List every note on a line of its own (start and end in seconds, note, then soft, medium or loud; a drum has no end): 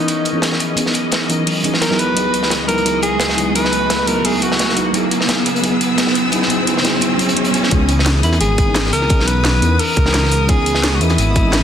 0.00 0.33 E3 medium
0.00 4.90 E3 medium
0.00 0.34 B3 medium
0.00 1.95 B3 medium
0.00 0.35 C#4 medium
0.00 1.95 C#4 medium
0.00 0.36 D#4 medium
0.00 0.57 D#4 medium
0.00 0.38 G#4 medium
0.00 1.31 A#4 medium
0.00 2.01 D#5 medium
0.00 4.90 D#5 medium
0.00 riser medium
0.08 closed hi-hat medium
0.25 closed hi-hat medium
0.33 0.74 E3 medium
0.33 0.75 B3 medium
0.33 0.76 C#4 medium
0.33 0.77 D#4 medium
0.38 0.77 G#4 medium
0.42 snare loud
0.42 closed hi-hat medium
0.52 snare medium
0.60 closed hi-hat medium
0.76 1.27 E3 medium
0.76 1.27 B3 medium
0.76 1.28 C#4 medium
0.76 1.29 D#4 medium
0.76 closed hi-hat medium
0.80 1.29 G#4 medium
0.86 snare soft
0.94 closed hi-hat medium
1.12 snare loud
1.12 closed hi-hat medium
1.29 1.62 E3 medium
1.29 1.63 B3 medium
1.29 1.63 C#4 medium
1.29 1.63 D#4 medium
1.29 1.64 A#4 medium
1.29 closed hi-hat medium
1.47 closed hi-hat medium
1.47 open hi-hat medium
1.63 1.73 E3 medium
1.63 1.73 B3 medium
1.63 1.73 C#4 medium
1.63 1.74 D#4 medium
1.63 1.74 G#4 loud
1.63 closed hi-hat medium
1.74 snare medium
1.82 2.01 A#4 loud
1.82 snare loud
1.82 closed hi-hat medium
1.90 2.13 F#3 medium
1.90 2.14 B3 medium
1.90 2.15 D#4 medium
1.90 2.15 E4 medium
1.90 2.15 G#4 loud
1.90 snare soft
1.99 4.91 C#2 medium
1.99 4.91 G#3 medium
1.99 4.91 F#4 medium
1.99 2.51 B4 loud
1.99 closed hi-hat medium
2.14 2.65 F#3 medium
2.14 2.66 B3 medium
2.14 2.67 D#4 medium
2.14 2.67 E4 medium
2.14 closed hi-hat medium
2.19 2.68 G#4 medium
2.34 closed hi-hat medium
2.43 snare soft
2.50 snare loud
2.50 closed hi-hat medium
2.66 2.82 F#3 medium
2.66 2.83 B3 medium
2.66 2.85 D#4 medium
2.66 2.85 E4 medium
2.66 3.01 A#4 loud
2.66 closed hi-hat medium
2.71 2.86 B4 medium
2.78 closed hi-hat soft
2.83 3.34 F#3 medium
2.83 3.35 B3 medium
2.83 3.36 D#4 medium
2.83 3.37 E4 medium
2.83 closed hi-hat medium
2.88 3.37 G#4 medium
3.02 3.52 G#4 loud
3.02 closed hi-hat medium
3.20 snare loud
3.20 closed hi-hat medium
3.29 snare medium
3.35 3.52 F#3 medium
3.35 3.53 B3 medium
3.35 3.54 D#4 medium
3.35 3.55 E4 medium
3.35 closed hi-hat medium
3.40 3.55 B4 medium
3.53 4.04 F#3 medium
3.53 4.05 B3 medium
3.53 4.05 D#4 medium
3.53 4.06 E4 medium
3.53 4.09 B4 loud
3.53 closed hi-hat medium
3.58 4.07 G#4 medium
3.65 snare soft
3.72 closed hi-hat medium
3.90 snare loud
3.90 closed hi-hat medium
4.05 4.21 F#3 medium
4.05 4.22 B3 medium
4.05 4.23 D#4 medium
4.05 4.24 E4 medium
4.05 4.27 A#4 loud
4.05 closed hi-hat medium
4.10 4.25 B4 medium
4.22 4.73 F#3 medium
4.22 4.74 B3 medium
4.22 4.75 D#4 medium
4.22 4.75 E4 medium
4.22 4.44 G#4 medium
4.22 closed hi-hat medium
4.22 open hi-hat medium
4.27 4.76 G#4 medium
4.42 4.94 F#4 medium
4.42 closed hi-hat medium
4.52 snare medium
4.59 snare loud
4.59 closed hi-hat medium
4.69 snare soft
4.74 4.91 F#3 medium
4.74 4.92 B3 medium
4.74 4.93 D#4 medium
4.74 4.93 E4 medium
4.74 closed hi-hat medium
4.79 4.94 B4 medium
4.92 7.68 C#3 medium
4.92 5.25 F#3 medium
4.92 7.68 F#3 medium
4.92 5.27 B3 medium
4.92 7.69 B3 medium
4.92 5.28 D#4 medium
4.92 5.28 E4 medium
4.92 7.68 G#4 medium
4.92 7.69 E6 medium
4.92 closed hi-hat medium
4.97 5.29 G#4 medium
5.11 closed hi-hat medium
5.21 snare medium
5.27 5.60 F#3 medium
5.27 5.61 B3 medium
5.27 5.62 D#4 medium
5.27 5.63 E4 medium
5.27 snare loud
5.27 closed hi-hat medium
5.27 closed hi-hat loud
5.31 5.64 G#4 medium
5.46 closed hi-hat medium
5.56 closed hi-hat soft
5.61 5.94 F#3 medium
5.61 5.96 B3 medium
5.61 5.97 D#4 medium
5.61 5.97 E4 medium
5.61 closed hi-hat medium
5.66 5.98 G#4 medium
5.81 closed hi-hat medium
5.96 6.29 F#3 medium
5.96 6.30 B3 medium
5.96 6.32 D#4 medium
5.96 6.32 E4 medium
5.96 snare loud
5.96 closed hi-hat medium
5.96 closed hi-hat loud
6.01 6.33 G#4 medium
6.07 snare medium
6.15 closed hi-hat medium
6.30 6.46 F#3 medium
6.30 6.48 B3 medium
6.30 6.49 D#4 medium
6.30 6.49 E4 medium
6.30 closed hi-hat loud
6.35 6.50 G#4 loud
6.42 snare soft
6.48 6.64 F#3 medium
6.48 6.65 B3 medium
6.48 6.66 D#4 medium
6.48 6.67 E4 medium
6.48 closed hi-hat medium
6.53 6.67 G#4 loud
6.65 6.81 F#3 medium
6.65 6.82 B3 medium
6.65 6.83 D#4 medium
6.65 6.84 E4 medium
6.65 closed hi-hat loud
6.65 closed hi-hat medium
6.70 6.85 G#4 loud
6.77 snare soft
6.82 6.98 F#3 medium
6.82 6.99 B3 medium
6.82 7.00 D#4 medium
6.82 7.01 E4 medium
6.82 snare loud
6.82 closed hi-hat medium
6.87 7.02 G#4 loud
6.99 7.16 F#3 medium
6.99 7.17 B3 medium
6.99 7.18 D#4 medium
6.99 7.19 E4 medium
6.99 closed hi-hat medium
6.99 closed hi-hat loud
7.04 7.19 G#4 loud
7.17 7.33 F#3 medium
7.17 7.34 B3 medium
7.17 7.35 D#4 medium
7.17 7.36 E4 medium
7.17 closed hi-hat medium
7.22 7.37 G#4 loud
7.29 closed hi-hat medium
7.34 7.50 F#3 medium
7.34 7.52 B3 medium
7.34 7.53 D#4 medium
7.34 7.53 E4 medium
7.34 closed hi-hat medium
7.39 7.54 G#4 medium
7.45 closed hi-hat medium
7.52 7.69 F#3 medium
7.52 7.69 B3 medium
7.52 7.70 D#4 medium
7.52 7.71 E4 medium
7.52 closed hi-hat medium
7.56 7.71 G#4 medium
7.63 snare medium
7.69 8.22 C#2 loud
7.69 8.20 E3 medium
7.69 8.21 B3 medium
7.69 11.63 B3 medium
7.69 8.22 C#4 medium
7.69 8.22 D#4 medium
7.69 11.63 D#6 medium
7.69 kick loud
7.69 closed hi-hat medium
7.74 8.23 G#4 loud
7.89 closed hi-hat medium
7.99 snare medium
8.06 snare loud
8.06 closed hi-hat loud
8.06 closed hi-hat medium
8.21 8.39 E2 medium
8.21 8.64 E3 medium
8.21 8.65 B3 medium
8.21 8.65 C#4 medium
8.21 8.66 D#4 medium
8.21 8.40 E4 medium
8.21 closed hi-hat medium
8.26 8.66 A#4 medium
8.33 snare medium
8.33 closed hi-hat soft
8.41 8.92 G#1 medium
8.41 8.89 G#4 loud
8.41 closed hi-hat medium
8.58 kick loud
8.58 closed hi-hat medium
8.65 9.06 E3 medium
8.65 9.08 B3 medium
8.65 9.08 C#4 medium
8.65 9.09 D#4 medium
8.70 9.10 G#4 medium
8.75 snare loud
8.75 closed hi-hat medium
8.75 closed hi-hat loud
8.85 snare medium
8.93 9.21 C#2 medium
8.93 9.29 A#4 loud
8.93 closed hi-hat medium
8.93 open hi-hat medium
9.02 snare soft
9.08 9.58 E3 medium
9.08 9.60 B3 medium
9.08 9.60 C#4 medium
9.08 9.61 D#4 medium
9.08 kick loud
9.08 closed hi-hat medium
9.13 9.62 G#4 medium
9.19 9.61 B1 loud
9.19 snare soft
9.28 9.82 B4 loud
9.28 closed hi-hat medium
9.44 snare loud
9.44 closed hi-hat medium
9.60 9.78 E2 medium
9.60 10.03 E3 medium
9.60 10.03 B3 medium
9.60 10.04 C#4 medium
9.60 10.05 D#4 medium
9.60 closed hi-hat medium
9.64 10.05 A#4 medium
9.79 10.51 A#4 loud
9.79 closed hi-hat medium
9.79 open hi-hat medium
9.96 10.13 C#2 medium
9.96 kick loud
9.96 closed hi-hat medium
10.04 10.45 E3 medium
10.04 10.47 B3 medium
10.04 10.47 C#4 medium
10.04 10.48 D#4 medium
10.04 snare medium
10.04 snare soft
10.09 10.48 G#4 medium
10.14 10.48 C#2 loud
10.14 snare loud
10.14 closed hi-hat medium
10.14 closed hi-hat loud
10.23 snare soft
10.32 closed hi-hat medium
10.32 open hi-hat medium
10.47 11.00 C#2 loud
10.47 10.97 E3 medium
10.47 10.98 B3 medium
10.47 10.99 C#4 medium
10.47 11.00 D#4 medium
10.47 10.97 G#4 loud
10.47 kick loud
10.47 closed hi-hat medium
10.51 11.00 G#4 loud
10.66 closed hi-hat medium
10.75 snare medium
10.83 snare loud
10.83 closed hi-hat medium
10.95 11.41 E3 medium
10.95 11.03 F#4 medium
11.00 11.17 E2 medium
11.00 11.42 B3 medium
11.00 11.43 C#4 medium
11.00 11.63 E4 loud
11.00 11.44 A#4 medium
11.00 11.43 D#5 medium
11.00 closed hi-hat medium
11.09 snare medium
11.09 closed hi-hat soft
11.18 11.63 G#1 medium
11.18 closed hi-hat medium
11.36 kick loud
11.36 closed hi-hat medium
11.43 11.63 E3 medium
11.43 11.63 B3 medium
11.43 11.63 C#4 medium
11.43 11.63 D#5 medium
11.47 11.63 G#4 loud
11.53 snare loud
11.53 closed hi-hat medium